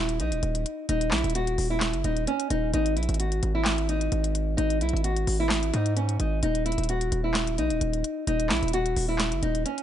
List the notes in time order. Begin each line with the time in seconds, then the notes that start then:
Already playing: D#1 E4
0.09 closed hi-hat
0.20 A#1 D#4, closed hi-hat
0.32 D#1, closed hi-hat
0.43 D#1, closed hi-hat
0.55 closed hi-hat
0.66 closed hi-hat
0.89 D#1 D#4, closed hi-hat
1.01 closed hi-hat
1.11 A#1 E4, snare, clap, closed hi-hat
1.18 closed hi-hat
1.24 D#1, closed hi-hat
1.30 closed hi-hat
1.35 F#4, closed hi-hat
1.47 closed hi-hat
1.58 D#1, open hi-hat
1.70 E4
1.80 snare, clap, closed hi-hat
1.93 F#1, closed hi-hat
2.04 D#1 D#4, closed hi-hat
2.17 closed hi-hat
2.27 C#4, closed hi-hat
2.40 closed hi-hat
2.50 D#1 D#4, closed hi-hat
2.74 G#1 D#4, closed hi-hat
2.86 closed hi-hat
2.96 A#1 E4, closed hi-hat
3.03 closed hi-hat
3.09 G#1, closed hi-hat
3.14 closed hi-hat
3.20 F#4, closed hi-hat
3.32 closed hi-hat
3.43 G#1, closed hi-hat
3.55 E4
3.65 snare, clap, closed hi-hat
3.78 closed hi-hat
3.89 D#4, closed hi-hat
4.01 closed hi-hat
4.12 G#1, closed hi-hat
4.24 closed hi-hat
4.35 closed hi-hat
4.57 G#1 D#4, closed hi-hat
4.70 closed hi-hat
4.81 B1 E4, closed hi-hat
4.89 closed hi-hat
4.93 G#1, closed hi-hat
5.04 F#4, closed hi-hat
5.17 closed hi-hat
5.27 G#1, open hi-hat
5.40 E4
5.50 snare, clap, closed hi-hat
5.63 closed hi-hat
5.74 G#2 D#4, closed hi-hat
5.86 closed hi-hat
5.96 C#4, closed hi-hat
6.09 closed hi-hat
6.19 G#1 D#4, closed hi-hat
6.43 D#1 D#4, closed hi-hat
6.55 closed hi-hat
6.66 E4, closed hi-hat
6.72 closed hi-hat
6.78 D#1, closed hi-hat
6.84 closed hi-hat
6.89 F#4, closed hi-hat
7.01 closed hi-hat
7.12 D#1, closed hi-hat
7.24 E4
7.34 snare, clap, closed hi-hat
7.47 closed hi-hat
7.58 A#1 D#4, closed hi-hat
7.70 D#1, closed hi-hat
7.81 D#1, closed hi-hat
7.93 closed hi-hat
8.04 closed hi-hat
8.27 D#1 D#4, closed hi-hat
8.40 closed hi-hat
8.50 A#1 E4, snare, clap, closed hi-hat
8.57 closed hi-hat
8.63 D#1, closed hi-hat
8.68 closed hi-hat
8.73 F#4, closed hi-hat
8.86 closed hi-hat
8.96 D#1, open hi-hat
9.09 E4
9.19 snare, clap, closed hi-hat
9.32 F#1, closed hi-hat
9.43 D#1 D#4, closed hi-hat
9.55 closed hi-hat
9.66 C#4, closed hi-hat
9.78 closed hi-hat